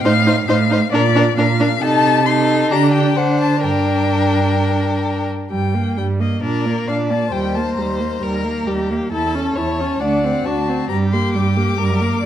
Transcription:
0.03 A2 D#4 C5 F5
0.26 D#4 C5
0.47 A2 D#4 C5 F5
0.70 D#4 C5
0.92 A#2 D4 A#4 D5
1.15 D4 A#4
1.37 A#2 D4 A#4 F5
1.60 D4 A#4
1.82 C3 D#4 A4 A5
2.26 D#4 A4 C6
2.71 D3 D4 G4 A#5
2.94 G5
3.17 D3 D4 C5 F#5
3.41 A5
3.63 G2 D4 A#4 G5
5.51 G2 G3 G5
5.74 A#3
5.97 G2 G3 G5
6.20 A#3 D#5
6.42 A#2 D4 A#4 D5
6.66 A#3
6.87 A#2 D4 D5 F5
7.10 A#3 A5
7.32 D#2 G3 C5 G5
7.55 A#3 A5
7.77 D#2 G3 A#5
8.01 A#3
8.23 D#2 G3 A#4
8.44 A#3
8.67 D#2 G3 G4
8.90 A#3
9.12 E2 E4 A4 A5
9.35 C#4
9.56 E2 E4 C#5 A5
9.80 C#4
10.00 D2 D4 D5 F#5
10.25 C4
10.45 D2 D4 F#4 A5
10.69 C4
10.89 G2 G3 G4 A#5
11.12 A#3 C6
11.33 G2 G3 D6
11.57 A#3
11.78 G2 G3 A#4
12.01 A#3
12.22 G2 D5

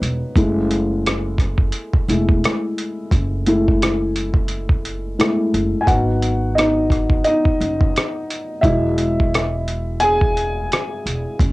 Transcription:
Already playing: F#3 G#3 B3 D#4 B4
0.02 E1, closed hi-hat
0.36 F#1 G#3 A3 E4, kick, closed hi-hat
0.71 closed hi-hat
1.06 cross-stick, closed hi-hat
1.38 kick, cross-stick, closed hi-hat
1.58 kick
1.72 closed hi-hat
1.94 kick
2.08 E1 G#3 A3 E4, closed hi-hat
2.29 kick
2.44 cross-stick, closed hi-hat
2.78 closed hi-hat
3.11 F#1, kick, closed hi-hat
3.46 G#3 A3 E4, closed hi-hat
3.68 kick
3.82 cross-stick, closed hi-hat
4.16 closed hi-hat
4.34 kick
4.48 closed hi-hat
4.69 kick
4.85 closed hi-hat
5.19 G#3 A3 E4, cross-stick, closed hi-hat
5.54 F#1, closed hi-hat
5.81 G#5
5.87 G#1 F#3 B3 D#4 F#4 F#5, kick, closed hi-hat
6.22 closed hi-hat
6.55 D#4 D#5, closed hi-hat
6.59 cross-stick
6.90 kick, cross-stick, closed hi-hat
7.10 kick
7.24 D#4 D#5, closed hi-hat
7.45 kick
7.60 F#1, closed hi-hat
7.81 kick
7.96 cross-stick, closed hi-hat
8.31 closed hi-hat
8.61 E1 F#3 G#3 E4 D#5 E5, kick, closed hi-hat
8.98 closed hi-hat
9.20 kick
9.34 cross-stick, closed hi-hat
9.68 closed hi-hat
10.00 G#4 G#5, closed hi-hat
10.21 kick
10.37 closed hi-hat
10.72 cross-stick, closed hi-hat
11.06 E1, closed hi-hat
11.39 F#1, kick, closed hi-hat

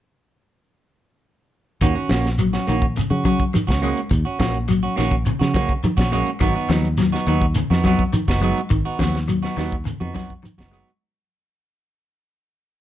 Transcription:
1.81 D#2 D#3 A#3 C#4 F#4, kick, closed hi-hat, high conga, shekere
1.95 C#4 F#4
2.09 A#1 A#3 C#4 F#4, snare, closed hi-hat, high conga, shekere
2.25 snare, closed hi-hat
2.38 F#3, closed hi-hat, high conga, shekere
2.53 C#4 F#4, snare
2.67 A#1 D#3 A#3 C#4 F#4, closed hi-hat, shekere
2.82 kick
2.96 C#3, closed hi-hat, high conga, shekere
3.10 C#3 C#4 F#4, high conga
3.25 F#3 C#4 F#4, kick, closed hi-hat, high conga, shekere
3.40 kick, closed hi-hat
3.54 D#3, muted fingered electric bass stroke, closed hi-hat, high conga, shekere
3.67 C#2 C#4 F#4, kick, snare
3.82 G#3 A#3 C#4 F#4, closed hi-hat, shekere
3.97 closed hi-hat
4.11 D#2, muted clean electric guitar stroke, kick, closed hi-hat, high conga, shekere
4.25 C#4 F#4
4.39 A#1 F3 A#3 C#4 F#4, kick, snare, closed hi-hat, high conga, shekere
4.54 closed hi-hat
4.68 F#3, closed hi-hat, shekere
4.83 C#4 F#4
4.96 A#1 D#3 A#3 C#4 F#4, snare, open hi-hat, shekere
5.11 kick, closed hi-hat
5.26 C#3, closed hi-hat, high conga, shekere
5.39 C#3 C#4 F#4, snare, high conga
5.54 A#3 C#4 F#4, kick, closed hi-hat, high conga, shekere
5.69 kick, closed hi-hat
5.84 D#3, muted fingered electric bass stroke, closed hi-hat, high conga, shekere
5.97 A#1 C#4 F#4, kick, snare, high conga
6.12 G#3 A#3 C#4 F#4, closed hi-hat, high conga, shekere
6.27 closed hi-hat
6.40 G#1 D#3 F#3 B3 D#4 F#4, kick, closed hi-hat, high conga, shekere
6.55 B3 D#4 F#4
6.69 D#2 F3 F#3 B3 D#4, muted clean electric guitar stroke, snare, closed hi-hat, high conga, shekere
6.85 closed hi-hat
6.98 F#3, snare, closed hi-hat, high conga, shekere
7.12 B3 D#4 F#4, snare
7.26 D#2 D#3 F#3 B3 D#4 F#4, closed hi-hat, shekere
7.42 kick
7.55 C#3, closed hi-hat, high conga, shekere
7.70 F2 B3 D#4 F#4, snare, high conga
7.84 F#3 B3 D#4 F#4, kick, snare, closed hi-hat, high conga, shekere
7.99 kick, closed hi-hat
8.13 D#3, muted fingered electric bass stroke, closed hi-hat, high conga, shekere
8.28 F#1 B3 D#4 F#4, kick, snare
8.41 F#3 G#3 B3 D#4 F#4, closed hi-hat, high conga, shekere
8.58 closed hi-hat
8.70 G#1 D#3, kick, closed hi-hat, high conga, shekere
8.85 B3 D#4 F#4
8.99 D#2 F3 F#3 B3 F#4, kick, snare, closed hi-hat, high conga, shekere
9.15 snare, closed hi-hat
9.28 F#3, closed hi-hat, high conga, shekere
9.43 B3 D#4 F#4, snare
9.57 D#2 D#3 F#3 B3 D#4 F#4, snare, open hi-hat, shekere
9.72 kick, closed hi-hat
9.85 C#3, closed hi-hat, high conga, shekere
10.00 F2 B3 D#4 F#4, high conga
10.14 F#3 B3 D#4 F#4, kick, snare, closed hi-hat, high conga, shekere
10.30 kick, closed hi-hat
10.43 D#3, muted fingered electric bass stroke, closed hi-hat, high conga, shekere
10.58 F#1 B3 D#4 F#4, kick, snare, high conga
10.71 F#3 G#3 B3 D#4 F#4, closed hi-hat, shekere
10.88 closed hi-hat

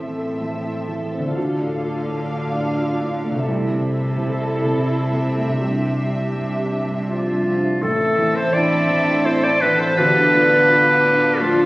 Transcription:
Already playing: A1 E2 A2 C4 E4 A4 E5
0.17 A4
0.41 E2
0.64 E4
0.89 E2
1.12 C4
1.18 D3 A3
1.27 F4
1.32 A4
1.36 D2 D3 D4 F5
1.60 A2
1.83 F4
2.07 A2
2.31 A4
2.54 A2
2.78 F4
3.01 A2
3.24 A3
3.30 C3
3.35 A3
3.39 E5
3.43 A4
3.47 C2 C3 E4 A4 E5
3.71 C3
3.94 E4
4.18 C3
4.42 A4
4.65 C3
4.89 E4
5.13 C3
5.37 A3
5.44 C3
5.49 D4
5.53 C4
5.57 C2 D4 G4
5.62 G4
5.86 G2
6.11 E4
6.36 G2
6.60 G4
6.84 G2
7.08 F3 F4 E5
7.33 G2
7.57 D4
7.82 A1 A2 A3 C4 A4 E5
8.18 E2 E3
8.36 C4 C5
8.54 D4 E4 D5
8.90 E2 D4 E4
9.25 C4 E4 C5
9.44 D4 D5
9.61 E2 E3 B3 B4
9.79 C4 C5
9.97 D2 D3 B3 D4 G4 B4 F5
10.33 A2 D4 F4
10.69 D4 F4
11.04 A2
11.40 F3 A3 F4

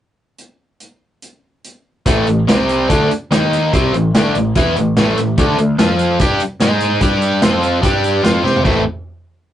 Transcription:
0.38 closed hi-hat
0.80 closed hi-hat
1.22 closed hi-hat
1.64 closed hi-hat
2.06 A1 A2 E3 A3, kick, closed hi-hat
2.26 A1 A2 E3, closed hi-hat
2.47 C2 C3 G3 C4, snare, closed hi-hat
2.69 closed hi-hat
2.89 D2 D3 A3 D4, kick, closed hi-hat
3.10 muted overdriven electric guitar stroke, muted picked electric bass stroke, closed hi-hat
3.31 D#2 D#3 A#3 D#4, snare, closed hi-hat
3.53 snare, closed hi-hat
3.73 C2 C3 G3 C4, kick, closed hi-hat
3.94 A1 A2 E3, closed hi-hat
4.14 D2 D3 A3 D4, snare, closed hi-hat
4.34 A1 A2 E3, closed hi-hat
4.55 E2 E3 B3 E4, kick, closed hi-hat
4.76 A1 A2 E3, closed hi-hat
4.97 A1 A2 E3 A3, snare, closed hi-hat
5.17 A1 A2 E3, snare, closed hi-hat
5.38 D2 D3 A3 D4, kick, closed hi-hat
5.57 D2 D3 A3, closed hi-hat
5.78 F2 F3 C4 F4, snare, closed hi-hat
5.99 closed hi-hat
6.19 G2 G3 D4 G4, kick, closed hi-hat
6.40 muted picked electric bass stroke, muted overdriven electric guitar stroke, closed hi-hat
6.60 G#2 G#3 D#4 G#4, snare, closed hi-hat
6.80 snare, closed hi-hat
7.01 G2 G3 D4 G4, kick, closed hi-hat
7.22 closed hi-hat
7.42 F2 F3 C4 F4, snare, closed hi-hat
7.63 closed hi-hat
7.82 G2 G3 D4 G4, kick, closed hi-hat
8.04 closed hi-hat
8.23 F2 F3 C4 F4, snare, closed hi-hat
8.43 C3 C4 G4 C5, snare
8.56 floor tom
8.64 A1 A2 E3 A3 C4 E4, kick, crash

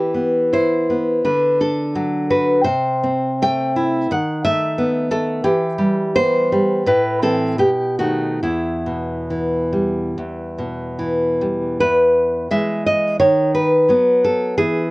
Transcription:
Already playing: E3 G4
0.14 B3
0.53 E4 C5
0.90 B3
1.24 D3 B4
1.60 D4 A4
1.95 F#3
2.30 F#4 B4
2.64 C3 C5
3.03 C4
3.42 A3 G5
3.76 E4
4.11 D#3 F#5
4.45 A3 E5
4.78 B3
5.11 A3 A4
5.44 E3 G4
5.78 G3
6.16 B3 C5
6.52 G3
6.86 A2 B4
7.23 E3 C4 A4
7.58 B2 G4
7.99 D#3 A3 F#4
8.43 E2 E4
8.86 B2
9.30 E3
9.73 G3
10.18 E2
10.58 B2
10.99 E3
11.41 G3
11.80 E2 B4
12.51 E3 G#3 E5
12.86 D#5
13.20 D#3 C#5
13.54 B4
13.88 F#3 B3
14.24 A4
14.57 E3 G#4

